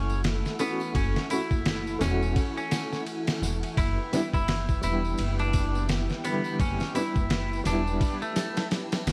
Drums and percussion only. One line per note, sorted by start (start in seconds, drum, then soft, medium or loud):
0.10 tambourine soft
0.24 snare loud
0.24 ride medium
0.24 tambourine medium
0.45 snare soft
0.45 tambourine soft
0.59 ride medium
0.59 tambourine medium
0.80 tambourine soft
0.80 triangle medium
0.95 kick loud
0.95 ride medium
0.95 tambourine soft
1.16 snare medium
1.16 tambourine soft
1.30 ride medium
1.30 tambourine medium
1.51 kick medium
1.51 tambourine soft
1.66 snare loud
1.66 ride medium
1.66 tambourine medium
1.87 tambourine soft
2.01 snare medium
2.01 ride medium
2.01 tambourine medium
2.01 triangle medium
2.23 tambourine soft
2.36 kick loud
2.36 ride medium
2.36 tambourine soft
2.58 tambourine soft
2.71 snare loud
2.71 ride medium
2.71 tambourine medium
2.71 triangle medium
2.93 snare soft
2.93 tambourine soft
3.07 ride medium
3.07 tambourine soft
3.27 snare loud
3.27 ride medium
3.27 tambourine soft
3.27 triangle medium
3.43 snare soft
3.43 tambourine medium
3.63 ride medium
3.63 tambourine soft
3.77 kick loud
3.77 ride medium
3.77 tambourine soft
4.13 snare medium
4.13 ride medium
4.13 tambourine medium
4.33 kick medium
4.33 tambourine soft
4.48 snare loud
4.48 ride medium
4.48 tambourine medium
4.69 kick medium
4.69 tambourine soft
4.83 ride medium
4.83 tambourine medium
4.83 triangle medium
5.05 tambourine soft
5.18 ride medium
5.18 tambourine medium
5.39 ride soft
5.39 tambourine soft
5.53 kick medium
5.53 ride medium
5.53 tambourine medium
5.75 tambourine soft
5.89 snare loud
5.89 ride medium
5.89 tambourine soft
6.09 snare soft
6.09 tambourine soft
6.24 ride medium
6.24 tambourine medium
6.44 tambourine soft
6.44 triangle medium
6.60 kick loud
6.60 ride medium
6.60 tambourine medium
6.80 snare medium
6.80 tambourine soft
6.95 ride medium
6.95 tambourine medium
7.16 kick loud
7.16 tambourine soft
7.30 snare loud
7.30 ride medium
7.30 tambourine soft
7.53 tambourine soft
7.65 snare medium
7.65 ride medium
7.65 tambourine medium
7.65 triangle medium
7.87 tambourine soft
8.01 kick loud
8.01 ride medium
8.01 tambourine medium
8.22 tambourine soft
8.36 snare loud
8.36 ride medium
8.36 tambourine medium
8.36 triangle medium
8.57 snare loud
8.57 ride medium
8.57 tambourine soft
8.71 snare loud
8.71 ride medium
8.71 tambourine soft
8.92 snare loud
8.92 ride medium
8.92 tambourine soft
8.92 triangle medium
9.07 snare loud
9.07 ride medium
9.07 tambourine medium